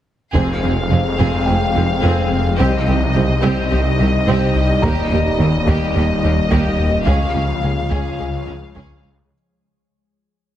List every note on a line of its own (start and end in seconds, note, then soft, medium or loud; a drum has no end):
0.34 0.42 F1 soft
0.34 2.61 F1 medium
0.34 0.46 F1 soft
0.34 0.52 F2 medium
0.34 0.44 F2 soft
0.34 2.55 F3 soft
0.34 2.55 G#3 soft
0.34 0.61 C4 soft
0.34 4.79 C4 medium
0.34 2.56 C4 soft
0.34 0.60 G#4 soft
0.34 2.55 G#4 soft
0.34 2.55 F5 soft
0.34 taiko soft
0.62 0.71 F1 soft
0.62 0.75 F1 soft
0.62 0.80 F2 medium
0.62 0.72 F2 soft
0.62 0.71 C4 soft
0.62 0.70 G#4 soft
0.90 1.02 F1 soft
0.90 0.99 F1 soft
0.90 1.00 F2 soft
0.90 1.08 F3 soft
0.90 0.99 C4 soft
0.90 0.98 G#4 soft
1.18 1.31 F1 soft
1.18 1.28 F1 soft
1.18 1.36 F2 medium
1.18 1.28 F2 soft
1.18 1.45 C4 soft
1.18 1.44 G#4 soft
1.46 1.58 F1 soft
1.46 1.56 F1 soft
1.46 1.55 F2 soft
1.46 1.65 F2 soft
1.46 1.55 C4 soft
1.46 1.54 G#4 soft
1.46 3.11 G5 soft
1.75 1.87 F1 soft
1.75 1.84 F1 soft
1.75 1.84 F2 soft
1.75 1.92 F2 soft
1.75 1.83 C4 soft
1.75 1.83 G#4 soft
2.02 2.14 F1 medium
2.02 2.12 F1 medium
2.02 2.12 F2 medium
2.02 2.21 F2 medium
2.02 2.29 C4 medium
2.02 2.29 G#4 soft
2.32 2.48 F2 soft
2.58 4.85 C2 medium
2.58 2.68 C2 medium
2.58 2.77 C2 medium
2.58 2.71 C2 medium
2.58 7.07 G3 medium
2.58 6.90 G3 medium
2.58 2.85 C4 medium
2.58 6.90 D#4 medium
2.58 7.07 G4 medium
2.58 2.85 G4 medium
2.58 7.07 D#5 soft
2.58 7.04 D#5 medium
2.86 2.95 C2 soft
2.86 3.04 C2 medium
2.86 2.96 C2 soft
2.86 2.99 C2 soft
2.86 2.96 C4 soft
2.86 2.94 G4 soft
3.15 3.23 C2 soft
3.15 3.24 C2 soft
3.15 3.27 C2 soft
3.15 3.33 C3 medium
3.15 3.24 C4 soft
3.15 3.23 G4 soft
3.43 3.51 C2 medium
3.43 3.52 C2 medium
3.43 3.61 C2 medium
3.43 3.55 C2 medium
3.43 3.69 C4 medium
3.43 3.69 G4 medium
3.71 3.80 C2 soft
3.71 3.84 C2 soft
3.71 3.89 C2 medium
3.71 3.79 C4 soft
3.71 3.79 G4 soft
3.99 4.11 C2 medium
3.99 4.17 C2 medium
3.99 4.08 C2 soft
3.99 4.08 C2 medium
3.99 4.08 C4 soft
3.99 4.07 G4 medium
4.27 4.44 C2 medium
4.27 4.36 C2 medium
4.27 4.39 C2 medium
4.27 4.36 C2 medium
4.27 4.53 C4 medium
4.27 4.54 G4 medium
4.55 4.72 C2 medium
4.82 7.08 D#1 medium
4.82 4.94 D#2 medium
4.82 4.91 D#2 medium
4.82 4.92 D#2 medium
4.82 5.01 D#2 medium
4.82 5.09 A#3 medium
4.82 7.08 A#3 medium
4.82 5.10 G4 medium
4.82 6.47 A#5 medium
4.82 taiko medium
5.11 5.23 D#2 medium
5.11 5.20 D#2 soft
5.11 5.20 D#2 medium
5.11 5.29 D#2 medium
5.11 5.19 A#3 medium
5.11 5.20 G4 soft
5.39 5.47 D#2 soft
5.39 5.51 D#2 soft
5.39 5.48 D#2 medium
5.39 5.57 D#3 medium
5.39 5.47 A#3 soft
5.39 5.48 G4 soft
5.67 5.75 D#2 medium
5.67 5.78 D#2 medium
5.67 5.75 D#2 medium
5.67 5.84 D#2 medium
5.67 5.93 A#3 medium
5.67 5.94 G4 medium
5.67 taiko medium
5.95 6.06 D#2 medium
5.95 6.03 D#2 soft
5.95 6.12 D#2 medium
5.95 6.03 A#3 soft
5.95 6.03 G4 medium
6.23 6.31 D#2 soft
6.23 6.35 D#2 soft
6.23 6.31 D#2 soft
6.23 6.40 D#2 medium
6.23 6.31 A#3 soft
6.23 6.33 G4 soft
6.51 6.59 D#2 medium
6.51 6.63 D#2 medium
6.51 6.69 D#2 medium
6.51 6.77 A#3 medium
6.51 6.77 G4 medium
6.51 taiko medium
6.79 6.96 D#2 medium
7.06 7.14 C#2 soft
7.06 7.15 C#2 soft
7.06 9.32 C#2 medium
7.06 7.18 C#2 medium
7.06 7.24 C#2 medium
7.06 9.32 F3 medium
7.06 9.00 G#3 medium
7.06 9.32 G#3 medium
7.06 7.33 C#4 soft
7.06 9.00 F4 soft
7.06 7.33 G#4 soft
7.06 9.32 G#4 medium
7.06 9.32 C#5 medium
7.06 8.71 F5 soft
7.06 9.08 F5 medium
7.06 taiko medium
7.35 7.47 C#2 soft
7.35 7.43 C#2 soft
7.35 7.53 C#2 medium
7.35 7.44 C#4 soft
7.35 7.43 G#4 soft
7.63 7.71 C#2 soft
7.63 7.75 C#2 soft
7.63 7.81 C#3 medium
7.63 7.72 C#4 soft
7.63 7.71 G#4 soft
7.90 8.02 C#2 medium
7.90 8.08 C#2 medium
7.90 7.99 C#2 medium
7.90 8.00 C#2 soft
7.90 8.17 C#4 soft
7.90 8.17 G#4 medium
7.90 taiko medium
8.19 8.30 C#2 soft
8.19 8.27 C#2 soft
8.19 8.28 C#2 soft
8.19 8.37 C#2 medium
8.19 8.28 C#4 soft
8.19 8.27 G#4 soft
8.47 8.58 C#2 soft
8.47 8.56 C#2 soft
8.47 8.65 C#2 medium
8.47 8.55 C#4 soft
8.47 8.55 G#4 soft
8.74 8.86 C#2 soft
8.74 8.83 C#2 medium
8.74 8.83 C#2 soft
8.74 8.93 C#2 medium
8.74 9.02 C#4 soft
8.74 9.02 G#4 soft
8.74 taiko medium
9.05 9.21 C#2 medium